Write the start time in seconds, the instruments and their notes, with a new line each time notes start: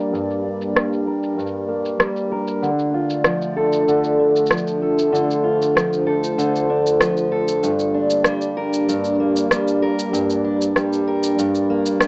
Already playing: steel-string acoustic guitar G2 G3 A#3 D4 A#4, ambient pad A#3 D4 G4 D5
0.13 steel-string acoustic guitar G2, shaker
0.31 shaker
0.44 steel-string acoustic guitar D4
0.61 shaker
0.75 steel-string acoustic guitar G3, cross-stick, shaker
0.93 shaker
1.07 steel-string acoustic guitar A#4
1.24 shaker
1.38 steel-string acoustic guitar G2, shaker
1.47 shaker
1.68 steel-string acoustic guitar A#3
1.86 shaker
2.00 steel-string acoustic guitar G3, cross-stick, shaker
2.16 shaker
2.32 steel-string acoustic guitar A#4
2.48 shaker
2.62 steel-string acoustic guitar D3, ambient pad A3 F4 D5, shaker
2.79 shaker
2.94 steel-string acoustic guitar F4
3.10 shaker
3.24 steel-string acoustic guitar F3, cross-stick, shaker
3.42 shaker
3.56 steel-string acoustic guitar A4
3.73 shaker
3.88 steel-string acoustic guitar D3, shaker
4.04 shaker
4.19 steel-string acoustic guitar D4
4.36 shaker
4.46 shaker
4.51 steel-string acoustic guitar F3, cross-stick, shaker
4.57 shaker
4.67 shaker
4.82 steel-string acoustic guitar A4
4.99 shaker
5.13 steel-string acoustic guitar D3, ambient pad C5, shaker
5.31 shaker
5.44 steel-string acoustic guitar F4
5.62 shaker
5.75 steel-string acoustic guitar F3, cross-stick, shaker
5.93 shaker
6.07 steel-string acoustic guitar A4
6.24 shaker
6.38 steel-string acoustic guitar D3, shaker
6.56 shaker
6.69 steel-string acoustic guitar D4
6.86 shaker
7.00 steel-string acoustic guitar F3, cross-stick, shaker
7.17 shaker
7.32 steel-string acoustic guitar A4
7.48 shaker
7.63 steel-string acoustic guitar G2, ambient pad A#3 D4 G4 D5, shaker
7.79 shaker
7.94 steel-string acoustic guitar D4
8.10 shaker
8.24 steel-string acoustic guitar G3, cross-stick, shaker
8.41 shaker
8.57 steel-string acoustic guitar A#4
8.73 shaker
8.89 steel-string acoustic guitar G2, shaker
9.04 shaker
9.20 steel-string acoustic guitar A#3
9.36 shaker
9.51 steel-string acoustic guitar G3, cross-stick, shaker
9.68 shaker
9.82 steel-string acoustic guitar A#4
9.99 shaker
10.13 steel-string acoustic guitar G2, shaker
10.30 shaker
10.44 steel-string acoustic guitar D4
10.61 shaker
10.76 steel-string acoustic guitar G3, cross-stick, shaker
10.93 shaker
11.07 steel-string acoustic guitar A#4
11.23 shaker
11.39 steel-string acoustic guitar G2, shaker
11.55 shaker
11.70 steel-string acoustic guitar A#3
11.86 shaker
12.01 steel-string acoustic guitar G3, cross-stick, shaker